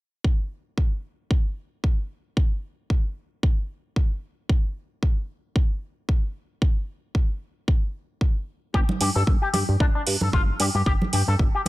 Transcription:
0.24 kick
0.78 kick
1.31 kick
1.84 kick
2.37 kick
2.90 kick
3.43 kick
3.96 kick
4.49 kick
5.03 kick
5.56 kick
6.09 kick
6.62 kick
7.15 kick
7.68 kick
8.21 kick
8.74 analog synth bass G1, clean electric guitar G4, kick
8.89 high conga
9.01 analog synth bass G2, clean electric guitar G4, open hi-hat
9.16 analog synth bass G2, clean electric guitar A4
9.27 analog synth bass G1, kick
9.42 clean electric guitar G4
9.53 analog synth bass G2, clean electric guitar G4, open hi-hat, high conga
9.69 analog synth bass G2
9.80 analog synth bass G1, clean electric guitar D4, kick
9.95 clean electric guitar D4
10.07 analog synth bass G2, open hi-hat
10.21 analog synth bass G2, clean electric guitar A4, high conga
10.33 analog synth bass G1, clean electric guitar F4, kick
10.60 analog synth bass G2, clean electric guitar G4, open hi-hat
10.75 analog synth bass G2, clean electric guitar G4
10.86 analog synth bass G1, clean electric guitar G4, kick
11.02 high conga
11.13 analog synth bass G2, clean electric guitar G4, open hi-hat
11.28 analog synth bass G2, clean electric guitar A4
11.39 analog synth bass G1, kick
11.55 clean electric guitar G4

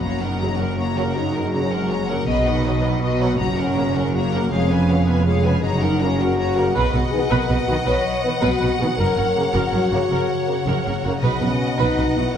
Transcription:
Already playing: harp F#3 F#4
0.02 double bass section F#1, harp F#2, cello section F#2, french horn section A#3, viola section F#4, violin section C#5 A#5
0.21 harp F#3, french horn section D#4, viola section A#4, violin section A#4 F#5
0.39 trombone section C#3 F#3, harp E3, viola section F#4, violin section C#5 A#5
0.58 harp F#3, french horn section C#4, viola section A#4, violin section A#4 F#5
0.77 french horn section A#3, viola section F#4, harp F#4, violin section C#5 A#5
0.95 trombone section C#3 F#3, harp C#3, violin section A#4 F#5, viola section A#4
1.15 harp F#3, french horn section D#4, viola section F#4, violin section C#5 A#5
1.35 harp C#3, viola section A#4, violin section A#4 F#5
1.52 harp B2, trombone section C#3 F#3, french horn section C#4, viola section F#4, violin section C#5 A#5
1.71 harp F#3, french horn section G#3, violin section A#4 F#5, viola section A#4
1.90 harp F#4, viola section F#4, violin section C#5 A#5
2.09 harp C#3, trombone section C#3 F#3, french horn section A#3, violin section A#4 F#5, viola section A#4
2.27 double bass section B1, cello section B2, harp B2, french horn section B3, violin section B4 D#5, viola section D#5
2.45 harp F#3, french horn section D#4, viola section B4, violin section D#5 F#5
2.64 trombone section B2 F#3, harp E3, violin section B4 D#5, viola section D#5
2.83 harp F#3, french horn section D#4, viola section B4, violin section D#5 F#5
3.01 french horn section F#4, harp F#4, violin section B4 D#5, viola section D#5
3.20 trombone section B2 F#3, harp B3, viola section B4, violin section D#5 F#5
3.38 double bass section F#1, harp F#2, cello section F#2, viola section F#4, french horn section F#4, violin section C#5 A#5
3.58 harp A#3, french horn section C#4, viola section A#4, violin section A#4 F#5
3.76 trombone section C#3 A#3, harp G#3, viola section F#4, violin section C#5 A#5
3.95 harp A#3, french horn section C#4, viola section A#4, violin section A#4 F#5
4.14 french horn section A#3, viola section F#4, harp F#4, violin section C#5 A#5
4.33 harp C#3, trombone section C#3 A#3, violin section A#4 F#5, viola section A#4
4.50 double bass section F1, harp F2, cello section F2, french horn section G#3, viola section G#4, violin section C#5 F5
4.69 harp B3, french horn section C#4, viola section B4, violin section F5 G#5
4.88 trombone section C#3 B3, harp A#3, viola section G#4, violin section C#5 F5
5.07 french horn section B3, harp B3, viola section B4, violin section F5 G#5
5.25 french horn section G#3, harp G#4, viola section G#4, violin section C#5 F5
5.44 trombone section C#3 B3, harp F3, viola section B4, violin section F5 G#5
5.62 double bass section F#1, cello section F#2, harp F#2, french horn section D#4, viola section F#4, violin section C#5 A#5
5.82 harp A#3, violin section A#4 F#5, viola section A#4
6.00 trombone section C#3 A#3, harp G#3, french horn section C#4, viola section F#4, violin section C#5 A#5
6.20 harp A#3, french horn section F#4, viola section A#4, violin section A#4 F#5
6.38 harp F#4, viola section F#4, violin section C#5 A#5
6.56 trombone section C#3 A#3, harp C#3, violin section A#4 F#5, viola section A#4
6.74 double bass section B1, harp B2, cello section B2, french horn section F#4, viola section B4, violin section D#5 F#5
6.93 double bass section B1, cello section B2, harp B3, viola section B4
7.11 trombone section D#3 B3, harp A#3, french horn section G#4
7.30 double bass section B1, cello section B2, harp B3, french horn section A#4, viola section B4
7.48 double bass section B1, cello section B2, harp F#4, french horn section B4, viola section B4
7.67 double bass section B1, cello section B2, trombone section D#3 B3, harp F#3, viola section F#4
7.85 double bass section B1, cello section B2, viola section B4, french horn section C#5
8.05 harp F#3
8.23 trombone section D#3 B3, harp E3, french horn section B4
8.42 double bass section B1, cello section B2, harp B3, french horn section F#4, viola section B4
8.61 double bass section B1, cello section B2, harp F#4, viola section B4
8.79 double bass section B1, cello section B2, trombone section D#3 B3, harp F#3, viola section F#4, french horn section G#4
8.97 double bass section F#1, harp F#2, cello section F#2, french horn section A#4, viola section A#4, violin section C#5
9.17 double bass section F#1, cello section F#2, harp A#3, viola section A#4
9.35 trombone section C#3 A#3, harp G#3
9.53 double bass section F#1, cello section F#2, harp A#3, french horn section F#4, viola section A#4
9.72 double bass section F#1, cello section F#2, harp F#4, viola section A#4
9.91 double bass section F#1, cello section F#2, harp C#3, trombone section C#3 A#3, viola section F#4
10.10 double bass section F#1, cello section F#2, harp A#3, viola section A#4
10.28 harp C#3
10.47 harp B2, trombone section C#3 A#3
10.66 double bass section F#1, cello section F#2, harp A#3, viola section A#4
10.84 double bass section F#1, cello section F#2, harp F#4, viola section A#4
11.03 double bass section F#1, cello section F#2, harp C#3, trombone section C#3 A#3, viola section F#4
11.22 double bass section B1, harp B2, cello section B2, trombone section B2 B3, french horn section D#4, viola section B4, violin section D#5 F#5
11.39 double bass section B1, cello section B2, harp B3, french horn section C#4, viola section B4
11.60 harp A#3
11.77 double bass section B1, cello section B2, trombone section B2 B3, french horn section D#4, viola section B4
11.97 double bass section B1, cello section B2, harp F#4, viola section B4
12.16 double bass section B1, cello section B2, harp F#3, french horn section E4, viola section F#4
12.34 violin section C#5

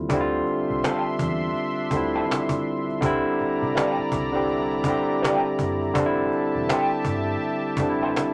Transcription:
Already playing: tine electric piano D3 G3 C4 E4 F4
0.09 fingered electric bass D2, tine electric piano D3 G3 C4, analog synth pad D4 E5 C6, cajon bass
0.15 tine electric piano E4
0.20 tine electric piano F4
0.46 cajon slap
0.70 fingered electric bass C2, cajon slap
0.84 clean electric guitar F3 C4 E4 A4, cajon slap
1.19 fingered electric bass E2, cajon bass
1.56 cajon slap
1.91 fingered electric bass D2, tine electric piano D3 G3, cajon bass
1.95 tine electric piano C4 E4
2.13 clean electric guitar F3 C4 E4 A4, cajon slap
2.31 cajon slap
2.49 cajon bass
2.90 cajon slap
3.01 fingered electric bass C2, tine electric piano D3 G3 C4, analog synth pad E4 D5 A#5, cajon bass
3.06 tine electric piano E4
3.40 muted fingered electric bass stroke, cajon slap
3.62 fingered electric bass C3, cajon slap
3.75 clean electric guitar E3 A#3 D4 G4, cajon slap
3.98 muted fingered electric bass stroke
4.12 fingered electric bass C2, cajon bass
4.32 tine electric piano D3 G3 C4
4.37 tine electric piano G4
4.49 cajon slap
4.84 tine electric piano D3 G3, cajon bass
4.88 tine electric piano C4 G4
5.06 cajon slap
5.22 clean electric guitar E3 A#3 D4 G4, cajon slap
5.59 fingered electric bass F#1, cajon bass
5.83 cajon slap
5.94 fingered electric bass F1, tine electric piano D3 G3 C4, analog synth pad G4 E5 A5, cajon bass
5.99 tine electric piano D4
6.06 tine electric piano E4
6.32 cajon slap
6.55 fingered electric bass E1, cajon slap
6.69 clean electric guitar E3 A3 C4 G4, cajon slap
7.05 fingered electric bass G1, cajon bass
7.42 cajon slap
7.77 fingered electric bass F1, tine electric piano D3 G3, cajon bass
7.81 tine electric piano C4 D4
7.90 tine electric piano E4
7.99 clean electric guitar A3 C4 G4, cajon slap
8.03 clean electric guitar E3
8.16 cajon slap

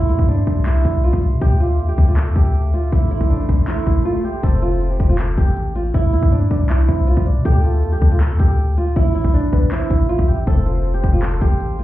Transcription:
Already playing: 808-style bass C2, glass harmonica G4 D5 E5 C6
0.09 808-style bass E2, nylon-string guitar E4, closed hi-hat
0.19 808-style bass G2, kick
0.28 nylon-string guitar D4, closed hi-hat
0.47 808-style bass C2, kick, closed hi-hat
0.66 nylon-string guitar E4, clap, closed hi-hat
0.85 808-style bass C2, kick, closed hi-hat
1.04 nylon-string guitar F4, closed hi-hat
1.13 808-style bass C2, kick
1.22 closed hi-hat
1.32 808-style bass C3
1.41 808-style bass D2, nylon-string guitar G4, glass harmonica A4 F5 D6, kick, closed hi-hat, swell
1.60 nylon-string guitar F4, closed hi-hat
1.79 808-style bass E2, closed hi-hat
1.88 808-style bass D2, nylon-string guitar G4
1.98 808-style bass D2, kick, closed hi-hat
2.08 nylon-string guitar F4
2.17 nylon-string guitar A4, clap, closed hi-hat
2.26 808-style bass F2
2.36 808-style bass D2, nylon-string guitar G4, kick, closed hi-hat
2.55 closed hi-hat
2.73 nylon-string guitar F4, closed hi-hat
2.92 808-style bass A1, nylon-string guitar E4, glass harmonica C5 C6, kick, closed hi-hat
3.11 nylon-string guitar E4, closed hi-hat
3.18 808-style bass A1, kick, closed hi-hat
3.24 closed hi-hat
3.30 nylon-string guitar D4, closed hi-hat
3.36 closed hi-hat
3.43 closed hi-hat
3.49 808-style bass A1, kick, closed hi-hat
3.68 nylon-string guitar E4, clap, closed hi-hat
3.87 808-style bass A1, kick, closed hi-hat
4.05 nylon-string guitar F4
4.24 nylon-string guitar G4
4.43 808-style bass F1, nylon-string guitar A4, soft synth lead C5, kick, closed hi-hat, crash
4.62 nylon-string guitar F4, closed hi-hat
4.81 closed hi-hat
4.90 nylon-string guitar G4
5.00 808-style bass F1, kick, closed hi-hat
5.09 nylon-string guitar F4
5.19 nylon-string guitar A4, clap, closed hi-hat
5.38 808-style bass A1, nylon-string guitar G4, kick, closed hi-hat
5.57 closed hi-hat
5.75 nylon-string guitar F4, closed hi-hat
5.94 808-style bass C2, nylon-string guitar E4, kick, closed hi-hat
6.13 808-style bass E2, nylon-string guitar E4, closed hi-hat
6.23 808-style bass G2, kick
6.32 nylon-string guitar D4, closed hi-hat
6.51 808-style bass C2, soft synth lead D5, kick, closed hi-hat
6.70 nylon-string guitar E4, soft synth lead E5, clap, closed hi-hat
6.89 808-style bass C2, soft synth lead C5, kick, closed hi-hat
7.08 nylon-string guitar F4, closed hi-hat
7.17 808-style bass C2, kick
7.26 soft synth lead D5, closed hi-hat
7.36 808-style bass C3
7.45 808-style bass D2, nylon-string guitar G4, soft synth lead A4, kick, closed hi-hat
7.64 nylon-string guitar F4, closed hi-hat
7.83 808-style bass E2, closed hi-hat
7.92 808-style bass D2, nylon-string guitar G4
8.02 808-style bass D2, kick, closed hi-hat
8.12 nylon-string guitar F4
8.21 nylon-string guitar A4, clap, closed hi-hat
8.30 808-style bass F2
8.39 808-style bass D2, nylon-string guitar G4, kick, closed hi-hat
8.59 closed hi-hat
8.77 nylon-string guitar F4, closed hi-hat
8.96 808-style bass A1, nylon-string guitar E4, kick, closed hi-hat
9.15 nylon-string guitar E4, closed hi-hat
9.21 808-style bass A1, kick, closed hi-hat
9.28 closed hi-hat
9.34 nylon-string guitar D4, closed hi-hat
9.40 closed hi-hat
9.47 closed hi-hat
9.53 808-style bass A1, soft synth lead B4, kick, closed hi-hat
9.72 nylon-string guitar E4, soft synth lead C5, clap, closed hi-hat
9.90 808-style bass A1, soft synth lead E5, kick, closed hi-hat
10.09 nylon-string guitar F4, closed hi-hat
10.19 808-style bass A1, kick
10.28 nylon-string guitar G4, closed hi-hat
10.47 808-style bass F1, glass harmonica A4 C5 F5 C6, nylon-string guitar A4, soft synth lead C5, kick, closed hi-hat
10.66 nylon-string guitar F4, closed hi-hat
10.85 closed hi-hat
10.94 nylon-string guitar G4
11.04 808-style bass F1, kick, closed hi-hat
11.13 nylon-string guitar F4
11.23 nylon-string guitar A4, clap, closed hi-hat
11.41 808-style bass A1, nylon-string guitar G4, kick, closed hi-hat
11.60 closed hi-hat
11.79 nylon-string guitar F4, closed hi-hat

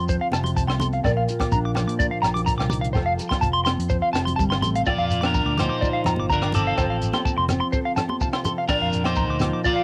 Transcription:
Already playing: fingered electric bass F2, nylon-string guitar F3 C4 F4 A4
0.08 clean electric guitar C5, kick, closed hi-hat, shekere
0.21 clean electric guitar F5
0.31 fingered electric bass F1, nylon-string guitar C3, clean electric guitar A5, cross-stick, closed hi-hat, high conga, low agogo, shekere
0.44 clean electric guitar C6, closed hi-hat, low conga
0.57 clean electric guitar A5, kick, closed hi-hat, shekere
0.67 fingered electric bass C2, clean electric guitar C6, cross-stick, low agogo
0.80 nylon-string guitar A4, clean electric guitar C6, closed hi-hat, high conga, low conga, shekere
0.93 clean electric guitar F5, closed hi-hat
1.04 fingered electric bass A#1, nylon-string guitar A#2 A#4, clean electric guitar D5, kick, cross-stick, closed hi-hat, low agogo, shekere
1.17 clean electric guitar F5
1.29 nylon-string guitar F4, closed hi-hat, shekere
1.40 clean electric guitar D6, kick, cross-stick, closed hi-hat, high conga, low agogo
1.52 fingered electric bass A#1, nylon-string guitar D4, clean electric guitar A#5, kick, closed hi-hat, shekere
1.65 clean electric guitar D6
1.75 nylon-string guitar F3, clean electric guitar D6, cross-stick, closed hi-hat, low conga, low agogo, shekere
1.87 fingered electric bass A#2, clean electric guitar D6, closed hi-hat
1.99 clean electric guitar D5, kick, closed hi-hat, shekere
2.11 clean electric guitar F5
2.22 fingered electric bass A#1, nylon-string guitar A#2, clean electric guitar A#5, cross-stick, closed hi-hat, low agogo, shekere
2.34 clean electric guitar D6, closed hi-hat, low conga
2.46 nylon-string guitar D3, clean electric guitar A#5, kick, closed hi-hat, shekere
2.58 fingered electric bass C2, clean electric guitar D6, cross-stick, low agogo
2.70 nylon-string guitar D#3, clean electric guitar D6, closed hi-hat, high conga, low conga, shekere
2.81 clean electric guitar F5, closed hi-hat
2.93 fingered electric bass F1, nylon-string guitar F3 A4, clean electric guitar C5, kick, cross-stick, closed hi-hat, low agogo, shekere
3.06 clean electric guitar F5
3.19 nylon-string guitar A4, closed hi-hat, shekere
3.29 clean electric guitar C6, kick, cross-stick, closed hi-hat, high conga, low agogo
3.41 fingered electric bass F1, nylon-string guitar F4, clean electric guitar A5, kick, closed hi-hat, shekere
3.53 clean electric guitar C6
3.65 nylon-string guitar C4, clean electric guitar C6, cross-stick, closed hi-hat, high conga, low conga, low agogo, shekere
3.79 fingered electric bass F2, closed hi-hat
3.90 clean electric guitar C5, kick, closed hi-hat, shekere
4.02 clean electric guitar F5
4.13 fingered electric bass F1, nylon-string guitar C3, clean electric guitar A5, cross-stick, closed hi-hat, high conga, low agogo, shekere
4.25 clean electric guitar C6, closed hi-hat, low conga
4.36 fingered electric bass G1, nylon-string guitar G3, clean electric guitar A5, kick, closed hi-hat, shekere
4.50 clean electric guitar C6, cross-stick, low agogo
4.62 fingered electric bass A1, nylon-string guitar A3, clean electric guitar C6, closed hi-hat, high conga, low conga, shekere
4.76 clean electric guitar F5, closed hi-hat
4.85 fingered electric bass A#1, nylon-string guitar A#2 F4, clean electric guitar F4 D5, kick, cross-stick, low agogo, shekere
4.90 clean electric guitar D5
4.97 fingered electric bass F2, clean electric guitar F5
5.10 closed hi-hat, shekere
5.21 clean electric guitar D4 D6, cross-stick, high conga, low agogo
5.26 clean electric guitar A#4
5.34 clean electric guitar A#5, kick, shekere
5.46 fingered electric bass D2, clean electric guitar D6
5.57 nylon-string guitar F3, clean electric guitar D#4 C5 D6, cross-stick, closed hi-hat, high conga, low conga, low agogo, shekere
5.69 clean electric guitar D6
5.81 nylon-string guitar F4, clean electric guitar D5, kick, shekere
5.93 clean electric guitar F5
6.04 fingered electric bass F2, nylon-string guitar F4, clean electric guitar A#5, cross-stick, closed hi-hat, low conga, low agogo, shekere
6.16 fingered electric bass G1, clean electric guitar D6, high conga
6.29 nylon-string guitar D3, clean electric guitar D4 A#4 A#5, kick, shekere
6.42 clean electric guitar D6, cross-stick, low agogo
6.52 nylon-string guitar D#3, clean electric guitar C4 A4 D6, closed hi-hat, low conga, shekere
6.67 clean electric guitar F5
6.78 fingered electric bass F1, nylon-string guitar F3 F4, clean electric guitar C5, kick, cross-stick, low agogo, shekere
6.88 fingered electric bass A1, clean electric guitar F5
7.02 closed hi-hat, shekere
7.13 clean electric guitar C6, cross-stick, high conga, low agogo
7.25 clean electric guitar A5, kick, shekere
7.37 fingered electric bass F1, clean electric guitar C6
7.49 nylon-string guitar C4, cross-stick, closed hi-hat, high conga, low conga, low agogo, shekere
7.60 clean electric guitar C6
7.72 nylon-string guitar A4, clean electric guitar C5, kick, shekere
7.85 clean electric guitar F5
7.96 nylon-string guitar A4, clean electric guitar A5, cross-stick, closed hi-hat, low conga, low agogo, shekere
8.09 clean electric guitar C6, high conga
8.21 nylon-string guitar C3 F4, clean electric guitar A5, kick, shekere
8.33 clean electric guitar C6, cross-stick, low agogo
8.44 nylon-string guitar A4, clean electric guitar C6, closed hi-hat, low conga, shekere
8.58 clean electric guitar F5
8.68 fingered electric bass A#1, nylon-string guitar A#2 F3 F4, clean electric guitar D4 A#4 D5, kick, cross-stick, low agogo, shekere
8.81 fingered electric bass F2, clean electric guitar F5
8.92 closed hi-hat, shekere
9.04 clean electric guitar D#4 C5 D6, cross-stick, high conga, low agogo
9.16 clean electric guitar A#5, kick, shekere
9.28 fingered electric bass D2, clean electric guitar D6
9.40 nylon-string guitar F3, clean electric guitar D6, cross-stick, closed hi-hat, high conga, low conga, low agogo, shekere
9.53 clean electric guitar D6
9.64 nylon-string guitar F4, clean electric guitar F4 D5, kick, shekere
9.76 clean electric guitar F5

